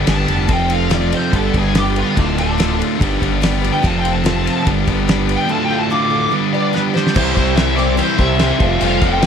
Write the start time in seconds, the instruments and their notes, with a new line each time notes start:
Already playing: overdriven electric guitar G2 D3, distorted electric guitar G2 D3 G3, string machine G4 B4 D5
0.06 picked electric bass G1, overdriven electric guitar G3 B3 D4 G4, lead electric guitar A5, snare, ride
0.27 picked electric bass F1, overdriven electric guitar G3 B3 D4 G4, ride
0.47 picked electric bass F1, overdriven electric guitar F2 C3 F3 A3 C4 F4, string machine F4 A4 C5, steel-string acoustic guitar A4, kick, ride
0.52 lead electric guitar G5
0.69 overdriven electric guitar F3 A3 C4 F4, steel-string acoustic guitar A4, lead electric guitar F5, ride
0.90 overdriven electric guitar F2 C3 F3 A3 C4 F4, steel-string acoustic guitar A4, snare, ride
0.94 lead electric guitar D5
1.10 overdriven electric guitar F3 A3 C4 F4, steel-string acoustic guitar A4, ride
1.14 lead electric guitar C5
1.33 picked electric bass G1, overdriven electric guitar G2 D3 G3 B3 D4 G4, string machine D4 G4 B4, lead electric guitar A4, steel-string acoustic guitar B4, kick, ride
1.53 picked electric bass G1, overdriven electric guitar G2 D3 G3 B3 D4 G4, steel-string acoustic guitar B4, kick, ride
1.57 lead electric guitar G#4
1.74 overdriven electric guitar G3 B3 D4 G4, lead electric guitar G4, steel-string acoustic guitar B4, snare, ride
1.95 overdriven electric guitar G3 B3 D4 G4, lead electric guitar F4, steel-string acoustic guitar B4, ride
2.17 picked electric bass D1, overdriven electric guitar D2 A2 D3 A3 F4, steel-string acoustic guitar D4 A4, string machine D4 F4 A4, lead electric guitar D4, kick, ride
2.38 overdriven electric guitar D3 A3 F4, lead electric guitar D4, steel-string acoustic guitar D4, ride
2.58 overdriven electric guitar D2 A2 D3 A3 F4, steel-string acoustic guitar D4 A4, snare, ride
2.79 overdriven electric guitar D3 A3 F4, steel-string acoustic guitar D4 A4, ride
3.01 picked electric bass G1, overdriven electric guitar G2 D3 G3 B3 D4 G4, string machine D#4 G#4 C5, steel-string acoustic guitar B4, kick, ride
3.16 string machine D4 G4 B4
3.20 picked electric bass G1, overdriven electric guitar D3 G3 B3 D4 G4, steel-string acoustic guitar B4, kick, ride
3.24 overdriven electric guitar G2
3.42 overdriven electric guitar G3 B3 D4 G4, steel-string acoustic guitar B4, snare, ride
3.61 overdriven electric guitar G3 B3 D4 G4, steel-string acoustic guitar B4, ride
3.72 lead electric guitar G5
3.81 picked electric bass F1, overdriven electric guitar F2 C3 F3, string machine F4 A4 C5, steel-string acoustic guitar C5, kick, ride
3.85 overdriven electric guitar A3 C4 F4, lead electric guitar A5
3.99 lead electric guitar G5
4.03 overdriven electric guitar F3 A3 C4 F4, steel-string acoustic guitar C5, ride
4.12 lead electric guitar A5
4.23 overdriven electric guitar F2 C3 F3 A3 C4 F4, steel-string acoustic guitar C5, lead electric guitar A5, snare, ride
4.44 overdriven electric guitar F3 A3 C4 F4, steel-string acoustic guitar C5, ride
4.65 picked electric bass G1, overdriven electric guitar G2 D3 G3 B3 D4 G4, string machine G4 B4 D5, steel-string acoustic guitar B4, kick, ride
4.86 picked electric bass G1, overdriven electric guitar D3 G3 B3 D4 G4, steel-string acoustic guitar B4, kick, ride
4.90 overdriven electric guitar G2
5.06 overdriven electric guitar G3 B3 D4 G4, steel-string acoustic guitar B4, snare, ride
5.28 overdriven electric guitar G3 B3 D4 G4, steel-string acoustic guitar B4, ride
5.36 lead electric guitar G5
5.49 overdriven electric guitar D2 A2 D3 A3 F4, steel-string acoustic guitar D4 A4, string machine F4 A4 D5, lead electric guitar A5
5.64 lead electric guitar G5
5.71 overdriven electric guitar D3 A3 F4, steel-string acoustic guitar D4 A4
5.79 lead electric guitar A5
5.91 overdriven electric guitar D2 A2 D3 A3 F4, steel-string acoustic guitar D4 A4, lead electric guitar D6
6.10 overdriven electric guitar A3 F4, steel-string acoustic guitar D4 A4
6.16 overdriven electric guitar D3
6.32 overdriven electric guitar G2 D3 G3 B3 D4 G4, string machine G4 B4 D5, steel-string acoustic guitar B4
6.53 overdriven electric guitar G2 D3 G3 B3 D4 G4, steel-string acoustic guitar B4, lead electric guitar D5
6.74 overdriven electric guitar G3 B3 D4 G4, steel-string acoustic guitar B4, lead electric guitar B4, snare
6.93 overdriven electric guitar G3 B3 D4 G4, steel-string acoustic guitar B4, lead electric guitar C5, snare
7.07 snare
7.15 picked electric bass C2, overdriven electric guitar C3 G3 C4 E4 G4 C5, steel-string acoustic guitar E3, upright piano C4 E4 G4 C5, string machine E4 G4 C5, kick, crash
7.35 picked electric bass C2, steel-string acoustic guitar G3, overdriven electric guitar E4 G4 C5, lead electric guitar C5, kick, crash
7.40 overdriven electric guitar C4
7.56 overdriven electric guitar C3 G3 C4 E4 G4 C5, lead electric guitar E5, snare, crash
7.76 steel-string acoustic guitar G3, upright piano C4 E4 G4 C5, overdriven electric guitar E4 G4 C5, lead electric guitar D5, crash
7.80 overdriven electric guitar C4
7.96 steel-string acoustic guitar C3 E3 G3, overdriven electric guitar C4 E4 G4 C5, lead electric guitar C5, crash
8.17 picked electric bass C2, overdriven electric guitar C3 G3 C4 E4 G4 C5, lead electric guitar E5, kick, crash
8.37 overdriven electric guitar C3 G3 C4 E4 G4 C5, steel-string acoustic guitar G3, snare, crash
8.58 picked electric bass F1, overdriven electric guitar F2 C3 F3 G3 C4 F4, upright piano F4 G4 A4 C5, steel-string acoustic guitar A4, kick, crash
8.63 string machine F4 G4 A4, overdriven electric guitar F4
8.79 picked electric bass F1, overdriven electric guitar F2 C3 F3 G3 C4 F4, steel-string acoustic guitar A4, lead electric guitar F5, crash
8.99 picked electric bass F1, overdriven electric guitar F3 G3 C4 F4, steel-string acoustic guitar A4, lead electric guitar G5, kick, crash
9.03 steel-string acoustic guitar C4 F4
9.20 overdriven electric guitar F2 C3 F3 G3 C4 F4, snare, crash